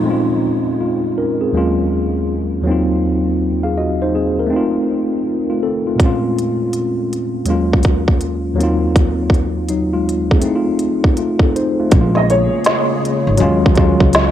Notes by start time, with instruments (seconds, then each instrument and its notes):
Already playing: tine electric piano D#4
0.01 tine electric piano A#2 G#3
0.06 tine electric piano C4 C#4
0.10 tine electric piano F4
0.81 tine electric piano G#3 F4
1.18 tine electric piano C#4 A#4
1.41 tine electric piano C4 G#4
1.53 tine electric piano D#2 F#3 G#3 A#3 C#4
1.57 tine electric piano F4
2.62 tine electric piano D#2 F#3 A#3
2.67 tine electric piano C4 D#4 F4
3.63 tine electric piano G#4 F5
3.78 tine electric piano F#4 D#5
4.02 tine electric piano D#4 C5
4.15 tine electric piano C4 G#4
4.39 tine electric piano A#4
4.46 tine electric piano A3 C4
4.53 tine electric piano D#4 F4
5.50 tine electric piano A3 F4
5.63 tine electric piano C4 A4
5.87 tine electric piano A3 F4
5.96 tine electric piano A#2 G#3, kick, closed hi-hat
6.01 tine electric piano C4 C#4
6.05 tine electric piano F4
6.39 closed hi-hat
6.73 closed hi-hat
7.13 closed hi-hat
7.45 tine electric piano D#2 F#3 G#3 A#3, closed hi-hat
7.49 tine electric piano C#4 F4
7.73 kick
7.83 kick, closed hi-hat
8.08 kick
8.21 closed hi-hat
8.54 tine electric piano D#2 F#3 A#3
8.60 tine electric piano C4 D#4 F4, closed hi-hat
8.96 kick, closed hi-hat
9.30 kick
9.34 closed hi-hat
9.69 tine electric piano F#3 D#4, closed hi-hat
9.93 tine electric piano G#3 F4
10.09 closed hi-hat
10.31 tine electric piano C4 G#4, kick
10.39 tine electric piano A3 C4, closed hi-hat
10.45 tine electric piano D#4 E4
10.55 tine electric piano F4
10.79 closed hi-hat
11.04 kick
11.17 tine electric piano A3 F4, closed hi-hat
11.39 tine electric piano C4 A4, kick
11.56 tine electric piano D#4 C5, closed hi-hat
11.80 tine electric piano A3 F4
11.90 upright bass A#1, analog synth pad C#3 A#3 G#4, tine electric piano G#3 A#3 C#4, kick, closed hi-hat
11.95 tine electric piano E4
12.01 tine electric piano F4
12.15 upright piano D#5, snare
12.30 upright piano C#5, closed hi-hat
12.64 snare, closed hi-hat
13.05 closed hi-hat
13.27 upright bass G#1
13.37 upright bass D#2, tine electric piano F#3 G#3 C#4, analog synth pad F#3 G#3 F4, closed hi-hat
13.42 tine electric piano F4
13.66 kick
13.74 tine electric piano F#3 G#3 C#4, kick, closed hi-hat
13.79 tine electric piano F4
14.00 upright bass C#2, kick
14.13 snare, closed hi-hat